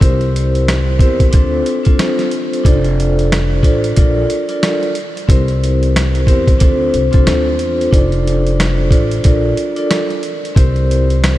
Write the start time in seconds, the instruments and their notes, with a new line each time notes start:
0.00 upright bass C2, vibraphone C4 E4 G4 A#4 C5, kick, closed hi-hat
0.21 closed hi-hat
0.36 closed hi-hat
0.55 closed hi-hat
0.68 cross-stick, snare, closed hi-hat
0.99 upright bass E2, vibraphone C4 E4 G4 A#4 C5, kick, closed hi-hat
1.20 kick, closed hi-hat
1.31 upright bass D2, vibraphone C4 D4 F4 A4 C5, kick, closed hi-hat
1.66 closed hi-hat
1.83 vibraphone C4 D4 F4 A4 C5, kick, closed hi-hat
1.99 cross-stick, snare, closed hi-hat
2.19 snare, closed hi-hat
2.31 closed hi-hat
2.53 closed hi-hat
2.64 upright bass F1, vibraphone D4 F4 A4 C5 D5, kick, closed hi-hat
2.85 closed hi-hat
3.00 closed hi-hat
3.19 closed hi-hat
3.32 cross-stick, snare, closed hi-hat
3.63 upright bass A1, vibraphone D4 F4 A4 C5 D5, kick, closed hi-hat
3.84 closed hi-hat
3.96 upright bass A#1, vibraphone D4 F4 A4 A#4 D5, kick, closed hi-hat
4.30 closed hi-hat
4.49 vibraphone D4 F4 A4 A#4 D5, closed hi-hat
4.63 cross-stick, snare, closed hi-hat
4.83 closed hi-hat
4.95 closed hi-hat
5.17 closed hi-hat
5.27 upright bass C2, vibraphone C4 E4 G4 A#4 C5, kick, closed hi-hat
5.48 closed hi-hat
5.64 closed hi-hat
5.83 closed hi-hat
5.96 cross-stick, snare, closed hi-hat
6.15 closed hi-hat
6.27 upright bass E2, vibraphone C4 E4 G4 A#4 C5, kick, closed hi-hat
6.48 kick, closed hi-hat
6.58 upright bass D2, vibraphone C4 D4 F4 A4 C5, kick, closed hi-hat
6.94 upright bass C2, closed hi-hat
7.11 upright bass C2, vibraphone C4 D4 F4 A4 C5, kick, closed hi-hat
7.27 upright bass D2, cross-stick, snare, closed hi-hat
7.59 upright bass E2, closed hi-hat
7.81 closed hi-hat
7.91 upright bass F1, vibraphone D4 F4 A4 C5 D5, kick, closed hi-hat
8.12 closed hi-hat
8.27 closed hi-hat
8.47 closed hi-hat
8.60 cross-stick, snare, closed hi-hat
8.90 upright bass A1, vibraphone D4 F4 A4 C5 D5, kick, closed hi-hat
9.11 closed hi-hat
9.23 upright bass A#1, vibraphone D4 F4 A4 A#4 D5, kick, closed hi-hat
9.57 closed hi-hat
9.76 vibraphone D4 F4 A4 A#4 D5, closed hi-hat
9.91 cross-stick, snare, closed hi-hat
10.10 closed hi-hat
10.23 closed hi-hat
10.45 closed hi-hat
10.55 upright bass C2, vibraphone C4 E4 G4 A#4 C5, kick, closed hi-hat
10.76 closed hi-hat
10.91 closed hi-hat
11.10 closed hi-hat
11.24 cross-stick, snare, closed hi-hat